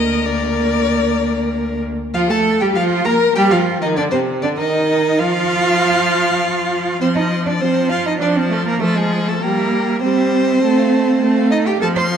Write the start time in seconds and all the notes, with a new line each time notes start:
Already playing: D2 A#3 A#4 D#5
0.25 A#3 D5
2.14 F3 F4 F5
2.30 A3 A4 A5
2.60 G3 G4 G5
2.75 F3 F4 F5
3.05 A#3 A#4 A#5
3.36 G3 G4 G5
3.51 F3 F4 F5
3.82 D#3 D#4 D#5
3.97 D3 D4 D5
4.11 C3 C4 C5
4.42 D3 D4 D5
4.58 D#3 D#4 D#5
5.19 F3 F4 F5
7.01 F3 C4 C5 C6
7.15 D#4 D#5 A5
7.31 C6
7.46 D4 D5 A5
7.60 F3 C4 C5 C6
7.76 A5
7.90 F4 F5 C6
8.06 D#4 D#5 A5
8.20 F3 D4 D5 C6
8.36 C4 C5 A5
8.50 A3 A4 C6
8.66 A#3 A#4 A5
8.80 F3 A3 A4 C6
8.96 G#3 G#4 A5
9.12 C6
9.27 A3 A4 A5
9.42 G3 A#3 A#4 G5
9.58 E5
9.74 G5
9.88 E5
10.02 G3 C4 C5 G5
10.17 E5
10.32 G5
10.46 E5
10.62 A3 A5
10.77 F5
10.93 A5
11.08 F5
11.21 A3 A5
11.36 F5
11.51 D#4 D#5 A5
11.66 G4 F5 G5
11.81 F3 A4 F5 A5
11.96 C5 C6
12.12 F5